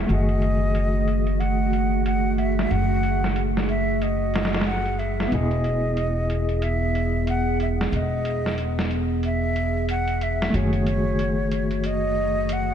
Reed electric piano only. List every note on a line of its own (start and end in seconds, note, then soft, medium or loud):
0.07 5.28 D#3 medium
0.07 5.27 A3 medium
0.11 5.29 F#4 medium
0.11 5.30 G#4 medium
5.28 10.48 B3 medium
5.33 10.51 E4 medium
5.33 10.52 G#4 medium
10.50 12.74 D#3 medium
10.50 12.74 A3 medium
10.55 12.74 F#4 medium
10.55 12.74 G#4 medium